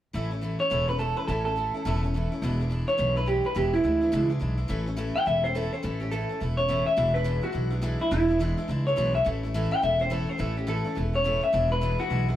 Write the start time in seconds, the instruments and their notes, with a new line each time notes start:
0.13 upright bass A1, steel-string acoustic guitar A2 E3 A3 C#4 E4
0.31 steel-string acoustic guitar A3 C#4 E4
0.41 steel-string acoustic guitar E3 A3 C#4 E4
0.59 steel-string acoustic guitar A3 C#4 E4, clean electric guitar C#5
0.70 upright bass E1, steel-string acoustic guitar A2 E3 A3 C#4 E4
0.88 steel-string acoustic guitar A3 C#4 E4, clean electric guitar B4
0.99 steel-string acoustic guitar E3 A3 C#4 E4, clean electric guitar A4
1.16 steel-string acoustic guitar A3 C#4 E4, clean electric guitar B4
1.28 upright bass A1, steel-string acoustic guitar A2 E3 A3 C#4 E4, clean electric guitar A4
1.45 steel-string acoustic guitar A3 C#4 E4, clean electric guitar A4
1.56 steel-string acoustic guitar E3 A3 C#4 E4
1.74 steel-string acoustic guitar A3 C#4 E4
1.85 upright bass E1, steel-string acoustic guitar A2 E3 A3 C#4 E4
2.03 steel-string acoustic guitar A3 C#4 E4
2.14 steel-string acoustic guitar E3 A3 C#4 E4
2.32 steel-string acoustic guitar A3 C#4 E4
2.42 upright bass E1, steel-string acoustic guitar E2 B2 E3 G#3 D4 E4
2.60 steel-string acoustic guitar E3 G#3 D4 E4
2.70 steel-string acoustic guitar E3 G#3 D4 E4
2.87 steel-string acoustic guitar E3 G#3 D4 E4, clean electric guitar C#5
2.98 upright bass B1, steel-string acoustic guitar E2 B2 E3 G#3 D4 E4
3.16 steel-string acoustic guitar E3 G#3 D4 E4, clean electric guitar B4
3.26 steel-string acoustic guitar E3 G#3 D4 E4, clean electric guitar G4
3.44 steel-string acoustic guitar E3 G#3 D4 E4, clean electric guitar B4
3.55 upright bass E1, steel-string acoustic guitar E2 B2 E3 G#3 D4 E4, clean electric guitar G4
3.73 steel-string acoustic guitar E3 G#3 D4 E4, clean electric guitar E4
3.84 upright bass D2, steel-string acoustic guitar E3 G#3 D4 E4
4.01 steel-string acoustic guitar E3 G#3 D4 E4
4.12 upright bass C#2, steel-string acoustic guitar E2 B2 E3 G#3 D4 E4
4.29 steel-string acoustic guitar E3 G#3 D4 E4
4.39 upright bass B1, steel-string acoustic guitar E3 G#3 D4 E4
4.57 steel-string acoustic guitar E3 G#3 D4 E4
4.68 upright bass A1, steel-string acoustic guitar A2 E3 A3 C#4 E4
4.86 steel-string acoustic guitar A3 C#4 E4
4.97 steel-string acoustic guitar A2 E3 A3 C#4 E4
5.15 steel-string acoustic guitar A3 C#4 E4, clean electric guitar G5
5.26 upright bass E1, steel-string acoustic guitar E3 A3 C#4 E4, clean electric guitar E5
5.44 steel-string acoustic guitar A3 C#4 E4, clean electric guitar C5
5.55 steel-string acoustic guitar A2 E3 A3 C#4 E4, clean electric guitar A4
5.72 steel-string acoustic guitar A3 C#4 E4, clean electric guitar C5
5.83 upright bass A1, steel-string acoustic guitar A2 E3 A3 C#4 E4, clean electric guitar A4
6.00 steel-string acoustic guitar A3 C#4 E4, clean electric guitar G4
6.11 steel-string acoustic guitar A2 E3 A3 C#4 E4, clean electric guitar A4
6.29 steel-string acoustic guitar A3 C#4 E4
6.40 upright bass E1, steel-string acoustic guitar E3 A3 C#4 E4
6.57 steel-string acoustic guitar A3 C#4 E4, clean electric guitar C#5
6.68 steel-string acoustic guitar A2 E3 A3 C#4 E4
6.86 steel-string acoustic guitar A3 C#4 E4, clean electric guitar E5
6.96 upright bass E1, steel-string acoustic guitar E2 B2 E3 G#3 D4 E4
7.14 steel-string acoustic guitar E3 G#3 D4 E4, clean electric guitar B4
7.24 steel-string acoustic guitar E2 B2 E3 G#3 D4 E4
7.42 steel-string acoustic guitar E3 G#3 D4 E4, clean electric guitar F#4
7.52 upright bass B1, steel-string acoustic guitar E3 G#3 D4 E4
7.70 steel-string acoustic guitar E3 G#3 D4 E4
7.82 steel-string acoustic guitar E2 B2 E3 G#3 D4 E4
7.99 steel-string acoustic guitar E3 G#3 D4 E4, clean electric guitar E4
8.11 upright bass E1, steel-string acoustic guitar E2 B2 E3 G#3 D4 E4, clean electric guitar E4
8.28 steel-string acoustic guitar E3 G#3 D4 E4
8.39 steel-string acoustic guitar E2 B2 E3 G#3 D4 E4
8.57 steel-string acoustic guitar E3 G#3 D4 E4
8.68 upright bass C#2, steel-string acoustic guitar E3 G#3 D4 E4
8.86 steel-string acoustic guitar E3 G#3 D4 E4, clean electric guitar C#5
8.96 upright bass B1, steel-string acoustic guitar E2 B2 E3 G#3 D4 E4
9.14 steel-string acoustic guitar E3 G#3 D4 E4, clean electric guitar E5
9.25 upright bass A1, steel-string acoustic guitar A2 E3 A3 C#4 E4
9.43 steel-string acoustic guitar A3 C#4 E4
9.54 steel-string acoustic guitar A2 E3 A3 C#4 E4
9.71 steel-string acoustic guitar A3 C#4 E4, clean electric guitar G5
9.82 upright bass E1, steel-string acoustic guitar E3 A3 C#4 E4, clean electric guitar E5
9.99 steel-string acoustic guitar A3 C#4 E4, clean electric guitar C5
10.10 steel-string acoustic guitar A2 E3 A3 C#4 E4, clean electric guitar A4
10.27 steel-string acoustic guitar A3 C#4 E4, clean electric guitar C5
10.38 upright bass A1, steel-string acoustic guitar A2 E3 A3 C#4 E4, clean electric guitar A4
10.55 steel-string acoustic guitar A3 C#4 E4, clean electric guitar G4
10.67 steel-string acoustic guitar A2 E3 A3 C#4 E4, clean electric guitar A4
10.84 steel-string acoustic guitar A3 C#4 E4
10.95 upright bass E1, steel-string acoustic guitar E3 A3 C#4 E4
11.13 steel-string acoustic guitar A3 C#4 E4, clean electric guitar C#5
11.24 steel-string acoustic guitar A2 E3 A3 C#4 E4
11.41 steel-string acoustic guitar A3 C#4 E4, clean electric guitar E5
11.53 upright bass E1, steel-string acoustic guitar E2 B2 E3 G#3 D4 E4
11.70 steel-string acoustic guitar E3 G#3 D4 E4, clean electric guitar B4
11.81 steel-string acoustic guitar E2 B2 E3 G#3 D4 E4
11.99 steel-string acoustic guitar E3 G#3 D4 E4, clean electric guitar F#4
12.10 upright bass B1, steel-string acoustic guitar E3 G#3 D4 E4
12.28 steel-string acoustic guitar E3 G#3 D4 E4